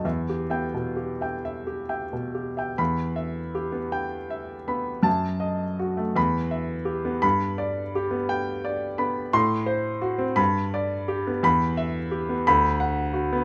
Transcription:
<<
  \new Staff \with { instrumentName = "Grand piano" } { \time 6/8 \key e \minor \tempo 4. = 56 << { r8 g''16 r2 r16 | b''4 r2 | a''4 r8 b''4 r8 | b''4 r2 |
c'''4 r8 b''4 r8 | b''4 r8 b''4 r8 | } \\ { e''16 g'16 e''16 b,16 g'16 <e'' g''>16 e''16 g'16 <e'' g''>16 b,16 g'16 <e'' g''>16 | r8 e''8 g'8 g''8 e''8 b''8 | r8 dis''8 fis'8 r8 e''8 g'8 | r8 d''8 g'8 g''8 d''8 b''8 |
r8 c''8 fis'8 r8 d''8 g'8 | r8 e''8 g'8 r8 fis''8 fis'8 | } >> }
  \new Staff \with { instrumentName = "Grand piano" } { \time 6/8 \key e \minor e,8 b8. r4. r16 | e,4~ e,16 b8 r8. b8 | fis,4~ fis,16 a16 e,4~ e,16 b16 | g,4~ g,16 b8 r8. b8 |
a,4~ a,16 c'16 g,4~ g,16 b16 | e,4~ e,16 b16 d,4~ d,16 b16 | }
>>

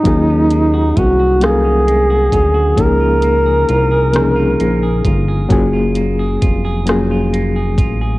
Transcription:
<<
  \new Staff \with { instrumentName = "Duduk" } { \time 6/8 \key ees \dorian \tempo 4. = 44 ees'4 ges'8 aes'4. | bes'2~ bes'8 r8 | r2. | }
  \new Staff \with { instrumentName = "Clean electric guitar" } { \time 6/8 \key ees \dorian ees16 des'16 aes16 ges'16 des'16 ges'16 ees16 des'16 aes16 ges'16 des'16 ges'16 | des16 f'16 bes16 aes'16 f'16 aes'16 des16 f'16 bes16 aes'16 f'16 aes'16 | ges16 f'16 bes16 aes'16 f'16 aes'16 ges16 f'16 bes16 aes'16 f'16 aes'16 | }
  \new Staff \with { instrumentName = "Reed electric piano" } { \time 6/8 \key ees \dorian <ges bes des' f' aes'>4 r8 <ges bes des' a' bes' f''>4 r8 | <f bes des' ees' g' aes'>4 r8 <f bes des' ees' aes'>4 r8 | <ges bes des' f' aes'>4 r8 <ges bes des' f' aes'>4 r8 | }
  \new Staff \with { instrumentName = "Analog synth bass" } { \clef bass \time 6/8 \key ees \dorian ees,4 c,4. d,8 | des,4 c,4 bes,,8 g,,8 | ges,,4 f,,4. a,,8 | }
  \new DrumStaff \with { instrumentName = "Drums" } \drummode { \time 6/8 <hh bd>8 hh8 <hh bd>8 <hh ss>8 hh8 <hh bd>8 | <hh bd>8 hh8 hh8 <hh ss>8 hh8 <hh bd>8 | <hh bd>8 hh8 <hh bd>8 <hh ss>8 hh8 <hh bd>8 | }
>>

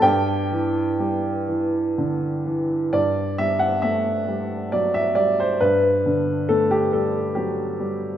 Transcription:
<<
  \new Staff \with { instrumentName = "Upright piano" } { \time 3/4 \key g \major \tempo 4 = 67 <g' g''>2 r4 | d''8 e''16 fis''16 e''4 d''16 e''16 d''16 c''16 | b'4 a'16 g'16 a'8 g'4 | }
  \new Staff \with { instrumentName = "Upright piano" } { \clef bass \time 3/4 \key g \major g,8 e8 g8 e8 d8 e8 | g,8 g8 a8 g8 fis8 g8 | g,8 d8 a8 g8 fis8 g8 | }
>>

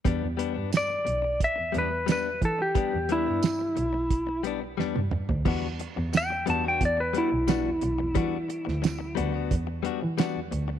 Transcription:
<<
  \new Staff \with { instrumentName = "Electric slide guitar" } { \time 4/4 \key e \minor \tempo 4 = 89 r4 d''4 e''8 b'8 b'8 a'16 g'16~ | g'8 e'2 r4. | r4 g''8 a''16 g''16 d''16 b'16 e'4.~ | e'4. r2 r8 | }
  \new Staff \with { instrumentName = "Clean electric guitar" } { \time 4/4 \key e \minor <g b d'>16 r16 <g b d'>16 <b d'>16 r4. <g b d'>16 r16 <g b d'>16 r8. | <g b d'>16 r16 <g b d'>16 <b d'>16 r4. <g b d'>16 r16 <g b d'>16 r8. | <g b d' fis'>16 r4 r16 <g b d' fis'>16 <b d' fis'>16 r8 <g b d' fis'>16 r16 <g b d' fis'>16 r8. | <g b d' fis'>16 r4 r16 <g b d' fis'>16 <b d' fis'>16 r8 <g b d' fis'>16 r16 <g b d' fis'>16 r8. | }
  \new Staff \with { instrumentName = "Double bass" } { \clef bass \time 4/4 \key e \minor e,16 e,8 g,8 r16 b,,8 r16 e,16 e,4 e8~ | e16 e,16 r16 g,8. b,,4. e,16 g,8 d,16 | e,8 r16 e,8. e,8 e,8 r16 b,,16 r16 e,16 b,,16 e,16 | e8. d,8. d,8 e,8 r16 e16 r16 e,16 d,8 | }
  \new DrumStaff \with { instrumentName = "Drums" } \drummode { \time 4/4 <hh bd>8 hh8 <hh sn tamb>8 hh8 <hh bd>8 hh8 <hh sn tamb>8 <hh bd>8 | <hh bd>8 hh8 <hh sn tamb>8 hh8 <hh bd>8 hh8 sn16 tommh16 toml16 tomfh16 | <cymc bd>8 hh8 <hh sn tamb>8 hh8 <hh bd>8 hh8 <hh sn tamb>8 hh8 | <hh bd>8 hh16 sn16 <hh sn tamb>8 hh8 <hh bd>8 hh8 <hh sn tamb>8 hh8 | }
>>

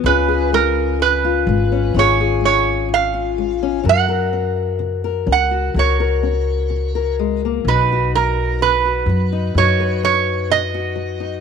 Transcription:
<<
  \new Staff \with { instrumentName = "Resonator guitar played with a steel bar" } { \time 4/4 \key b \major \tempo 4 = 63 b'8 ais'8 b'4 cis''8 cis''8 eis''4 | fis''4. fis''8 cis''4. r8 | b'8 ais'8 b'4 cis''8 cis''8 dis''4 | }
  \new Staff \with { instrumentName = "Steel-string acoustic guitar" } { \time 4/4 \key b \major << { <cis' eis' gis'>16 gis'4 eis'8 cis'16 <cis' eis' gis'>16 gis'4 eis'8 cis'16 | <fis' ais'>16 ais'4 ais'8 fis'16 <fis' ais'>16 ais'4 ais'8. | <dis' fis'>16 fis'4 fis'8 dis'16 <dis' fis' b'>16 b'4 fis'8 dis'16 | } \\ { cis8 gis8 gis,8 gis8 cis8 gis8 gis,8 gis8 | fis8 cis'8 cis8 cis'8 fis8 cis'8 cis8 gis16 ais16 | b,8 fis8 b,8 fis8 b,8 fis8 b,8 fis8 | } >> }
  \new Staff \with { instrumentName = "Upright bass" } { \clef bass \time 4/4 \key b \major cis,4. gis,,8 gis,,2 | fis,4. cis,8 cis,2 | b,,4. fis,8 fis,2 | }
>>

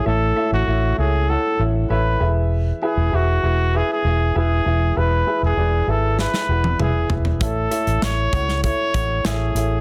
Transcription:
<<
  \new Staff \with { instrumentName = "Upright piano" } { \time 4/4 \key a \major \tempo 4 = 98 <e' a' cis'' e''>8 <e' a' cis'' e''>8 <e' a' cis'' e''>8 <e' a' cis'' e''>8 <e' a' cis'' fis''>8 <e' a' cis'' e''>8 <e' a' cis'' e''>8 <e' gis' b' e''>8~ | <e' gis' b' e''>8 <e' gis' b' e''>8 <e' gis' b' e''>8 <e' gis' b' e''>8 <e' gis' b' e''>8 <e' gis' b' e''>8 <e' gis' b' e''>8 <e' gis' b' e''>8 | <e' gis' b' e''>8 <e' gis' b' e''>8 <e' gis' b' d''>8 <e' gis' b' e''>8 <e' gis' b' e''>8 <e' gis' b' fis''>8 <e' gis' b' e''>8 <e' b' e''>8 | <e' a' cis'' e''>8 <e' a' cis'' e''>8 r8 <e' a' cis'' fis''>8 <e' a' cis'' e''>8 <e' a' fis''>8 <e' a' cis'' e''>8 <e' a' cis'' e''>8 | }
  \new Staff \with { instrumentName = "Upright piano" } { \clef bass \time 4/4 \key a \major a,4. r2 e8~ | e4 r2 r8 e8~ | e4 r2. | a,4. r2 r8 | }
  \new Staff \with { instrumentName = "Trumpet" } { \time 4/4 \key a \major a'8. fis'8. gis'8 a'8 r8 b'8. r16 | r8 gis'8 fis'4 gis'16 gis'8. gis'4 | b'8. gis'8. a'8 b'4 gis'8 r8 | a'4 cis''4 cis''4 gis'4 | }
  \new Staff \with { instrumentName = "Fingered electric bass" } { \clef bass \time 4/4 \key a \major a,,8 r16 a,,16 a,,8 cis,8. r16 a,,8 a,,8 e,,8~ | e,,8 r16 e,,16 e,,8 e,,8. r16 e,,8 e,,8 e,,8 | e,,8 r16 e,,16 e,,8 gis,,8. r16 e,,8 e,,8 e,,8 | a,,8 r16 a,,16 a,,8 cis,8. r16 a,,8 a,,8 a,,8 | }
  \new DrumStaff \with { instrumentName = "Drums" } \drummode { \time 4/4 r4 r4 r4 r4 | r4 r4 r4 r4 | r4 r4 sn16 sn8 tommh16 toml8 tomfh16 tomfh16 | <hh bd>8 hh16 hh16 <hh sn>8 <hh bd>16 sn16 <hh bd>8 <hh bd>8 <hh sn>8 hh8 | }
>>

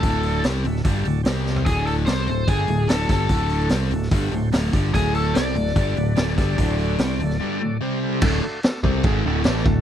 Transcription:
<<
  \new Staff \with { instrumentName = "Electric slide guitar" } { \time 4/4 \key d \mixolydian \tempo 4 = 146 a'4 r2. | gis'8 a'8 c''4 gis'4 a'8 a'8~ | a'4 r2. | gis'8 a'8 d''2.~ |
d''2. r4 | r1 | }
  \new Staff \with { instrumentName = "Tonewheel organ" } { \time 4/4 \key d \mixolydian <d' fis' a' d''>8 <d' fis' a' d''>8 <d' fis' a' d''>8 <d' fis' a' e''>8 <d' fis' a' d''>8 <d' fis' a' d''>8 <g c' g' c''>8 <g c' g' c''>8 | <a d' fis' a'>8 <a d' fis' a'>8 <a d' fis' a'>8 <a d' fis' a'>8 <a d' fis' a'>8 <a d' fis' a'>8 <a d' fis' a'>8 <a d' fis' a'>8 | <a d' fis' a'>8 <a d' fis' a'>8 <a d' fis' a'>8 <a d' fis' a'>8 <a d' fis' b'>8 <a d' fis' c''>8 <a d' fis' a'>8 <a d' fis' a'>8 | <a d' fis' c''>8 <a d' fis' a'>8 <a d' fis' a'>8 <a d' fis' a'>8 <a d' fis' a'>8 <a d' fis' b'>8 <a d' fis' a'>8 <a d' fis' a'>8 |
<a d' fis' c''>8 <a d' fis' a'>8 <a d' fis' c''>8 <a d' fis' a'>8 <a d' fis' a'>8 <a d' fis' a'>8 <g c' g' c''>8 <g c' g' a'>8 | <a d' fis' a'>8 <a d' fis' a'>8 <a d' fis' a'>8 <a d' fis' a'>8 <a d' fis' a'>8 <a d' fis' a'>8 <a d' fis' a'>8 <a d' fis' a'>8 | }
  \new Staff \with { instrumentName = "Overdriven electric guitar" } { \clef bass \time 4/4 \key d \mixolydian <d, a, d>4 <c g c'>8 <d, a,>8 <g, d g>8 <d, a,>8 <c g c'>4 | <d, a, d>4 <c g c'>8 <d, a,>8 <g, d g>8 <d, a,>8 <d, a, d>8 <g, d g>8 | <d, a, d>4 <c g c'>8 <d, a,>8 <g, d g>8 <d, a,>8 <d, a, d>8 <g, d g>8 | <d, a, d>4 <c g c'>8 <d, a,>8 <g, d g>8 <d, a,>8 <d, a, d>8 <g, d g>8 |
<d, a, d>4 <c g c'>8 <d, a,>8 <g, d g>8 <d, a,>8 <c g c'>4 | <d, a, d>8 r4 <c g c'>8 <gis, ees gis>8 <d, a, d>8 <a, e a>8 <d, a,>8 | }
  \new Staff \with { instrumentName = "Picked electric bass" } { \clef bass \time 4/4 \key d \mixolydian d,,4 c,8 d,,8 g,,8 d,,8 c,4 | d,,4 c,8 d,,8 g,,8 d,,8 d,,8 g,,8 | d,,4 c,8 d,,8 g,,8 d,,8 d,,8 g,,8 | d,,4 c,8 d,,8 g,,8 d,,8 d,,8 g,,8 |
d,,4 c,8 d,,8 r2 | d,,8 r4 c,8 gis,,8 d,,8 a,,8 d,,8 | }
  \new DrumStaff \with { instrumentName = "Drums" } \drummode { \time 4/4 <hho bd>8 hho8 <hho sn>8 hho16 sn16 <hho bd>8 hho8 <hho sn>8 sn16 tomfh16 | <hho bd>8 hho8 <hho sn>8 hho8 <hho bd>8 hho8 <hho sn>8 <hho bd sn>8 | <hho bd>8 hho8 <hho sn>8 hho16 sn16 <hho bd>8 hho8 <hho sn>8 <hho bd>8 | <hho bd>8 hho8 <hho sn>8 hho16 sn16 <hho bd>8 hho8 <hho sn>8 <hho bd sn>8 |
<hho bd>8 hho8 <hho sn>8 hho16 sn16 r4 r4 | <cymc bd>4 <cymc sn>8 bd8 <cymc bd>4 <cymc sn>16 sn16 bd8 | }
>>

